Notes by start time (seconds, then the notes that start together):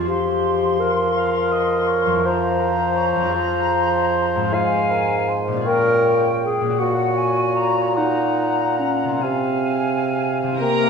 Already playing: F2 C4
0.01 G#4
0.05 G4 C5
0.10 F3 C6
0.80 A#4
1.17 F5
1.52 D#5
1.88 C#5
2.06 F2
2.11 C4
2.15 E4
2.20 A#4
2.25 F3 C5 A#5
2.60 A#4
2.97 C#5
3.16 F2
3.21 C4
3.25 F4
3.30 G#4
3.34 F3 C5
4.36 G#2
4.40 C4
4.45 F4
4.50 G#4 C5 G#5
4.54 G#2 F5
4.91 A#4
5.29 C5
5.48 A#2
5.52 C#4
5.57 F4 G#4
5.65 A#2 A#4 C#5 G5
6.42 G#4
6.61 A#2
6.65 C#4
6.70 F#4
6.78 A#2 F#4 C#5 F#5
7.17 G#5
7.56 A#5
7.96 D#4 F#5 A#5
8.80 C#4
9.04 C3
9.08 C4
9.13 F4
9.18 C4 G#4
9.22 C3 F5 G#5
10.43 C3
10.47 C4
10.52 E4
10.57 G4 A#4
10.61 C3 A#3 A#4 G5 A#5